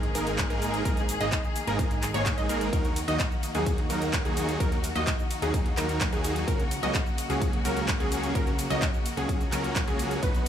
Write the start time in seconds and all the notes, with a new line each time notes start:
Already playing: G#1 D#3 A#3 G#4
0.03 closed hi-hat
0.15 G#1 G#3 A#3 D#4 G#4 A#4, open hi-hat, cabasa
0.27 closed hi-hat, cabasa
0.38 kick, clap, closed hi-hat, cabasa
0.50 G#1 G#3 A#3 D#4 G#4 A#4, closed hi-hat, cabasa
0.62 open hi-hat, cabasa
0.74 closed hi-hat, cabasa
0.85 G#1 G#3 A#3 D#4 G#4 A#4, kick, closed hi-hat, cabasa
0.97 closed hi-hat, cabasa
1.09 open hi-hat, cabasa
1.21 G#1 G#3 A#3 D#4 G#4 D#5, closed hi-hat, cabasa
1.32 kick, clap, closed hi-hat, cabasa
1.44 cabasa
1.56 open hi-hat, cabasa
1.67 G#1 G#3 A#3 D#4 G#4 A#4, closed hi-hat, cabasa
1.79 kick, closed hi-hat, cabasa
1.91 closed hi-hat, cabasa
2.02 clap, open hi-hat, cabasa
2.14 G#1 G#3 A#3 D#4 G#4 C#5, closed hi-hat, cabasa
2.26 kick, clap, closed hi-hat, cabasa
2.37 G#1 G#3 A#3 D#4 G#4 D#5, closed hi-hat, cabasa
2.49 G#1 G#3 A#3 D#4 G#4 A#4, open hi-hat, cabasa
2.61 closed hi-hat, cabasa
2.73 D#2 F#3 A#3 D#4 F#4 A#4, kick, closed hi-hat, ride, cabasa
2.85 closed hi-hat, cabasa
2.96 open hi-hat, ride, cabasa
3.08 D#2 F#3 A#3 D#4 F#4 D#5, closed hi-hat, cabasa
3.20 kick, clap, closed hi-hat, ride, cabasa
3.31 cabasa
3.43 open hi-hat, ride, cabasa
3.55 D#2 F#3 A#3 D#4 F#4 G#4, closed hi-hat, cabasa
3.66 kick, closed hi-hat, ride, cabasa
3.78 closed hi-hat
3.90 D#2 F#3 A#3 D#4 F#4 A#4, open hi-hat, ride, cabasa
4.02 closed hi-hat, cabasa
4.13 kick, clap, closed hi-hat, ride, cabasa
4.25 D#2 F#3 A#3 D#4 F#4 G#4, closed hi-hat, cabasa
4.37 open hi-hat, ride, cabasa
4.49 closed hi-hat, cabasa
4.60 D#2 F#3 A#3 D#4 F#4 A#4, kick, closed hi-hat, ride, cabasa
4.72 closed hi-hat, cabasa
4.84 open hi-hat, ride, cabasa
4.95 D#2 F#3 A#3 D#4 F#4 D#5, closed hi-hat, cabasa
5.07 kick, clap, closed hi-hat, ride, cabasa
5.19 cabasa
5.31 open hi-hat, ride, cabasa
5.42 D#2 F#3 A#3 D#4 F#4 G#4, closed hi-hat, cabasa
5.54 kick, closed hi-hat, ride, cabasa
5.66 closed hi-hat
5.77 D#2 F#3 A#3 D#4 F#4 A#4, clap, open hi-hat, ride, cabasa
5.89 closed hi-hat, cabasa
6.01 kick, clap, closed hi-hat, ride, cabasa
6.12 D#2 F#3 A#3 D#4 F#4 G#4, closed hi-hat, cabasa
6.24 open hi-hat, ride, cabasa
6.36 closed hi-hat, cabasa
6.47 C#2 C#3 F#3 A#3 C#4 F#4 A#4, kick, closed hi-hat, ride, cabasa
6.60 closed hi-hat, cabasa
6.71 open hi-hat, ride, cabasa
6.83 C#2 F#3 A#3 C#4 F#4 D#5, closed hi-hat, cabasa
6.95 kick, clap, closed hi-hat, ride, cabasa
7.06 cabasa
7.18 open hi-hat, ride, cabasa
7.30 C#2 F#3 A#3 C#4 F#4 G#4, closed hi-hat, cabasa
7.41 kick, closed hi-hat, ride, cabasa
7.53 closed hi-hat
7.65 C#2 F#3 A#3 C#4 F#4 A#4, open hi-hat, ride, cabasa
7.77 closed hi-hat, cabasa
7.88 kick, clap, closed hi-hat, ride, cabasa
8.00 C#2 F#3 A#3 C#4 F#4 G#4, closed hi-hat, cabasa
8.12 open hi-hat, ride, cabasa
8.24 closed hi-hat, cabasa
8.35 C#2 F#3 A#3 C#4 F#4 A#4, kick, closed hi-hat, ride, cabasa
8.47 closed hi-hat, cabasa
8.59 open hi-hat, ride, cabasa
8.70 C#2 F#3 A#3 C#4 F#4 D#5, closed hi-hat, cabasa
8.82 kick, clap, closed hi-hat, ride, cabasa
8.94 cabasa
9.06 open hi-hat, ride, cabasa
9.17 C#2 F#3 A#3 C#4 F#4 G#4, closed hi-hat, cabasa
9.29 kick, closed hi-hat, ride, cabasa
9.41 closed hi-hat, cabasa
9.52 C#2 F#3 A#3 C#4 F#4 A#4, clap, open hi-hat, ride, cabasa
9.64 closed hi-hat, cabasa
9.76 kick, clap, closed hi-hat, ride, cabasa
9.88 C#2 F#3 A#3 C#4 F#4 G#4, closed hi-hat, cabasa
9.99 open hi-hat, ride, cabasa
10.11 closed hi-hat, cabasa
10.23 B1 D#3 F#3 B3 D#4 F#4 B4, kick, closed hi-hat, ride, cabasa
10.35 closed hi-hat, cabasa